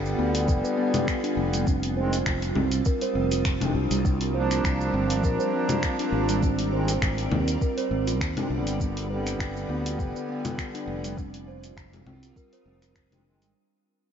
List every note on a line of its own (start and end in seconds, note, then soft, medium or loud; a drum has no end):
0.00 0.13 G1 medium
0.00 1.64 D3 loud
0.00 1.66 G3 medium
0.00 1.66 B3 loud
0.00 1.67 B3 medium
0.00 11.18 F4 medium
0.00 1.67 D5 medium
0.00 1.67 G#5 medium
0.06 shaker soft
0.18 0.49 D2 medium
0.18 0.34 B3 loud
0.35 open hi-hat medium
0.35 shaker medium
0.48 0.61 F1 medium
0.48 0.63 B4 medium
0.48 kick loud
0.48 shaker medium
0.64 0.77 B4 loud
0.64 shaker soft
0.78 0.93 B3 loud
0.94 1.07 F4 medium
0.94 open hi-hat medium
0.94 low conga medium
0.94 shaker medium
1.08 finger snap loud
1.08 kick loud
1.08 shaker medium
1.24 1.37 D4 loud
1.24 open hi-hat soft
1.24 shaker soft
1.37 2.22 F1 medium
1.54 1.67 G3 medium
1.54 open hi-hat medium
1.54 shaker medium
1.66 8.79 G3 medium
1.66 1.82 C4 medium
1.66 kick loud
1.66 shaker medium
1.72 8.79 C4 medium
1.83 open hi-hat soft
1.83 shaker soft
1.96 2.16 D#3 medium
1.96 2.16 G#3 medium
1.96 2.17 C4 loud
1.96 2.12 C5 medium
2.13 open hi-hat medium
2.13 shaker medium
2.25 2.51 F1 loud
2.25 8.80 A#4 medium
2.25 finger snap medium
2.25 kick loud
2.25 shaker medium
2.42 4.05 D#6 medium
2.42 open hi-hat soft
2.42 shaker soft
2.56 2.80 C2 medium
2.56 2.71 C4 loud
2.56 low conga medium
2.72 open hi-hat medium
2.72 shaker medium
2.85 3.01 A#4 medium
2.85 kick loud
2.85 shaker medium
3.01 3.14 C5 medium
3.01 open hi-hat soft
3.01 shaker soft
3.15 3.74 F1 medium
3.15 3.31 C4 medium
3.32 3.45 F4 medium
3.32 open hi-hat medium
3.32 shaker medium
3.45 finger snap loud
3.45 kick loud
3.45 shaker medium
3.60 3.71 D#3 medium
3.60 3.72 G#3 medium
3.60 3.72 C4 loud
3.60 3.74 D4 medium
3.60 open hi-hat soft
3.60 low conga medium
3.60 shaker soft
3.75 3.88 C2 medium
3.91 4.60 C2 medium
3.91 4.04 G3 medium
3.91 open hi-hat medium
3.91 shaker medium
4.05 4.20 C4 medium
4.05 kick loud
4.05 shaker medium
4.21 open hi-hat soft
4.21 shaker soft
4.33 6.40 F3 loud
4.33 6.41 A#3 loud
4.33 4.50 C5 medium
4.37 6.42 D4 loud
4.51 finger snap soft
4.51 open hi-hat soft
4.51 shaker medium
4.60 4.89 C2 loud
4.60 11.17 D5 medium
4.64 finger snap medium
4.64 kick loud
4.64 shaker medium
4.81 shaker soft
4.94 5.24 G1 loud
4.94 5.09 C4 loud
5.10 open hi-hat medium
5.10 shaker medium
5.24 5.37 A#1 medium
5.24 5.39 A#4 medium
5.24 kick loud
5.24 shaker medium
5.40 5.52 C5 loud
5.40 shaker soft
5.54 5.69 C4 loud
5.69 5.83 F4 medium
5.69 open hi-hat medium
5.69 low conga medium
5.69 shaker medium
5.83 finger snap medium
5.83 kick loud
5.83 shaker medium
5.99 6.12 D4 loud
5.99 open hi-hat soft
5.99 shaker soft
6.12 6.97 G#1 medium
6.29 6.42 G3 medium
6.29 open hi-hat medium
6.29 shaker medium
6.42 6.58 C4 medium
6.42 kick loud
6.42 shaker medium
6.59 open hi-hat soft
6.59 shaker soft
6.71 6.91 D#3 loud
6.71 6.92 G#3 medium
6.71 6.92 C4 loud
6.71 6.88 C5 medium
6.88 open hi-hat medium
6.88 shaker medium
7.02 7.26 G#1 loud
7.02 finger snap medium
7.02 kick loud
7.02 shaker soft
7.18 open hi-hat soft
7.18 shaker soft
7.31 7.56 D#2 medium
7.31 7.47 C4 loud
7.31 low conga medium
7.48 open hi-hat medium
7.48 shaker medium
7.61 7.77 A#4 medium
7.61 kick loud
7.61 shaker medium
7.77 7.90 C5 loud
7.77 open hi-hat soft
7.77 shaker soft
7.91 8.21 G#1 medium
7.91 8.06 C4 loud
8.07 8.20 F4 medium
8.07 open hi-hat medium
8.07 shaker medium
8.21 8.34 D#2 medium
8.21 finger snap loud
8.21 kick loud
8.21 shaker soft
8.36 8.47 D#3 loud
8.36 8.47 G#3 medium
8.36 8.48 C4 loud
8.36 8.50 D4 loud
8.36 open hi-hat soft
8.36 low conga medium
8.36 shaker soft
8.50 8.66 C2 medium
8.50 9.06 D3 medium
8.50 9.07 G3 medium
8.50 9.08 B3 medium
8.66 9.35 G1 medium
8.66 8.80 G3 medium
8.66 open hi-hat medium
8.66 shaker medium
8.80 11.18 B3 medium
8.80 8.96 B3 medium
8.80 kick loud
8.80 shaker medium
8.97 open hi-hat soft
8.97 shaker soft
9.07 11.15 D3 loud
9.07 11.16 G3 medium
9.07 9.25 B4 medium
9.12 11.17 B3 loud
9.27 finger snap soft
9.27 open hi-hat medium
9.27 shaker medium
9.31 11.18 G#5 medium
9.39 9.64 G1 loud
9.39 finger snap medium
9.39 kick loud
9.39 shaker medium
9.57 shaker soft
9.69 10.00 D2 medium
9.69 9.85 B3 loud
9.86 open hi-hat medium
9.86 shaker medium
9.99 10.12 F1 medium
9.99 10.14 B4 medium
9.99 kick loud
9.99 shaker medium
10.16 10.28 B4 medium
10.16 shaker soft
10.29 10.44 B3 loud
10.45 10.58 F4 medium
10.45 open hi-hat medium
10.45 low conga medium
10.45 shaker medium
10.58 finger snap loud
10.58 kick medium
10.58 shaker medium
10.75 10.88 D4 loud
10.75 open hi-hat soft
10.75 shaker soft
10.87 11.73 F1 medium
11.04 11.17 G3 medium
11.04 open hi-hat medium
11.04 shaker medium
11.17 13.55 G3 medium
11.17 11.33 C4 medium
11.17 kick loud
11.17 shaker medium
11.27 13.55 C4 medium
11.27 13.55 F4 loud
11.34 open hi-hat soft
11.34 shaker soft
11.48 11.63 C5 medium
11.64 open hi-hat medium
11.64 shaker medium
11.76 12.01 F1 loud
11.76 13.55 A#4 medium
11.76 13.55 D#6 medium
11.76 finger snap loud
11.76 kick loud
11.76 shaker medium
11.93 open hi-hat soft
11.93 low conga medium
11.93 shaker soft
12.06 12.31 C2 medium
12.06 12.22 C4 loud
12.06 low conga medium
12.23 open hi-hat medium
12.23 shaker medium
12.36 12.52 A#4 medium
12.36 kick loud
12.36 shaker medium
12.53 12.65 C5 loud
12.53 open hi-hat soft
12.53 shaker soft
12.66 13.41 F1 medium
12.66 12.82 C4 loud
12.82 12.95 F4 medium
12.82 finger snap soft
12.82 open hi-hat medium
12.82 shaker medium
12.95 finger snap loud
12.95 kick loud
12.95 shaker medium
13.11 13.22 D#3 medium
13.11 13.22 G#3 medium
13.11 13.23 C4 loud
13.11 13.25 D4 loud
13.11 open hi-hat soft
13.11 low conga medium
13.11 shaker soft
13.24 13.53 D#3 medium
13.24 13.53 G#3 medium
13.24 13.54 C4 medium
13.41 13.52 G#1 medium
13.41 13.55 G3 medium
13.41 open hi-hat medium
13.41 shaker medium